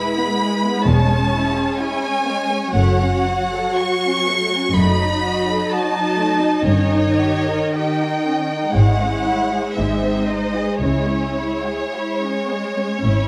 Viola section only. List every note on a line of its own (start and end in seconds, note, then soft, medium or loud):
0.00 2.70 G#3 soft
0.00 0.83 E4 soft
0.87 2.74 C#4 soft
2.74 6.62 F#3 medium
2.74 4.72 F#4 medium
4.75 8.76 D#4 soft
6.65 8.76 D#3 soft
8.75 11.79 G#3 soft
8.75 9.75 E4 soft
9.78 10.83 D#4 soft
10.82 11.81 E4 soft
11.94 12.99 G#3 soft
13.04 13.28 C#4 medium